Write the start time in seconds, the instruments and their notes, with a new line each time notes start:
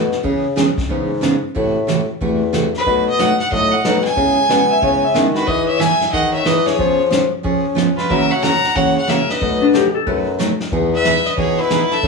Already playing: bassoon B2
0.12 snare
0.23 steel-string acoustic guitar C#3 E3 B3 C#4 G#4, bassoon C#3, brush sweep, kick
0.56 steel-string acoustic guitar C#3 E3 B3 C#4 G#4, snare, hi-hat pedal
0.78 kick, snare
0.89 bassoon G#2, steel-string acoustic guitar C#3 E3 B3 C#4 G#4, brush sweep, kick
1.21 steel-string acoustic guitar C#3 E3 B3 C#4 G#4, snare, hi-hat pedal
1.55 bassoon A2, steel-string acoustic guitar C3 E3 A3 E4 F#4, brush sweep, kick
1.87 steel-string acoustic guitar C3 E3 A3 E4 F#4, snare, hi-hat pedal
2.21 bassoon E2, steel-string acoustic guitar C3 E3 A3 E4 F#4, brush sweep, kick
2.53 steel-string acoustic guitar C3 E3 A3 E4 F#4, snare, hi-hat pedal
2.74 fiddle B4, snare
2.86 steel-string acoustic guitar B2 F#3 A3 D#4 F#4, bassoon B2, brush sweep, kick
3.09 fiddle D#5
3.19 steel-string acoustic guitar B2 F#3 A3 D#4 F#4, fiddle F#5, snare, hi-hat pedal
3.40 fiddle F#5, snare
3.52 bassoon A2, steel-string acoustic guitar B2 F#3 A3 D#4 F#4, fiddle D#5, brush sweep, kick
3.71 fiddle F#5
3.84 bassoon B2, steel-string acoustic guitar B2 F#3 A3 D#4 F#4, snare, hi-hat pedal
4.04 fiddle G#5, snare
4.16 steel-string acoustic guitar C#3 G#3 B3 E4 G#4, bassoon C#3, brush sweep, kick
4.49 bassoon B2, steel-string acoustic guitar C#3 G#3 B3 E4 G#4, electric slide guitar F#5, snare, hi-hat pedal
4.71 electric slide guitar E5
4.82 steel-string acoustic guitar C#3 G#3 B3 E4 G#4, bassoon C#3, electric slide guitar C#5, brush sweep, kick
5.04 electric slide guitar E5
5.14 steel-string acoustic guitar C#3 G#3 B3 E4 G#4, bassoon D#3, snare, hi-hat pedal
5.34 fiddle F#4 B4, snare
5.47 steel-string acoustic guitar E3 B3 D#4 G#4, bassoon E3, fiddle B4 D#5, brush sweep, kick
5.66 fiddle C#5 E5
5.78 steel-string acoustic guitar E3 B3 D#4 G#4, fiddle E5 G#5, snare, hi-hat pedal
6.01 snare
6.12 bassoon D#3, steel-string acoustic guitar E3 B3 D#4 G#4, fiddle D#5 F#5, brush sweep, kick
6.33 fiddle C#5 E5
6.45 steel-string acoustic guitar E3 B3 D#4 G#4, bassoon E3, fiddle B4 D#5, snare, hi-hat pedal
6.66 fiddle G#4 C#5, snare
6.78 steel-string acoustic guitar F3 B3 C#4 G#4, bassoon F3, brush sweep, kick
7.10 steel-string acoustic guitar F3 B3 C#4 G#4, snare, hi-hat pedal
7.43 steel-string acoustic guitar F3 B3 C#4 G#4, bassoon C#4, brush sweep, kick
7.75 steel-string acoustic guitar F3 B3 C#4 G#4, snare, hi-hat pedal
7.96 fiddle F4 B4, snare
8.09 steel-string acoustic guitar C#3 E3 A#3 C#4 F#4, bassoon F#3, fiddle A#4 E5, brush sweep, kick
8.31 fiddle C#5 F#5
8.42 steel-string acoustic guitar C#3 E3 A#3 C#4 F#4, fiddle F#5 A#5, snare, hi-hat pedal
8.64 snare
8.75 steel-string acoustic guitar C#3 E3 A#3 C#4 F#4, bassoon C#3, fiddle C#5 F#5, brush sweep, kick
8.97 fiddle C#5 F#5
9.07 steel-string acoustic guitar C#3 E3 A#3 C#4 F#4, fiddle A#4 E5, snare, hi-hat pedal
9.29 fiddle B4 D#5, snare
9.40 steel-string acoustic guitar B2 F#3 A3 D#4 F#4, bassoon B2, brush sweep, kick
9.62 electric slide guitar D4
9.73 steel-string acoustic guitar B2 F#3 A3 D#4 F#4, electric slide guitar G4, snare, hi-hat pedal
9.95 electric slide guitar A4
10.07 bassoon F#2, steel-string acoustic guitar B2 F#3 A3 D#4 F#4, electric slide guitar B4, brush sweep, kick
10.39 steel-string acoustic guitar B2 F#3 A3 D#4 F#4, snare, hi-hat pedal
10.60 snare
10.72 bassoon E2, steel-string acoustic guitar E3 B3 D#4 G#4, brush sweep, kick
10.94 fiddle B4 E5
11.05 steel-string acoustic guitar E3 B3 D#4 G#4, snare, hi-hat pedal
11.26 fiddle B4 D#5, snare
11.37 bassoon B2, steel-string acoustic guitar E3 B3 D#4 G#4, fiddle G#4 C#5, brush sweep, kick
11.59 fiddle E4 B4
11.70 steel-string acoustic guitar E3 B3 D#4 G#4, snare, hi-hat pedal
11.91 fiddle A4 E5, snare
12.03 bassoon A2, steel-string acoustic guitar C#3 E3 A3 C#4 G#4, brush sweep, kick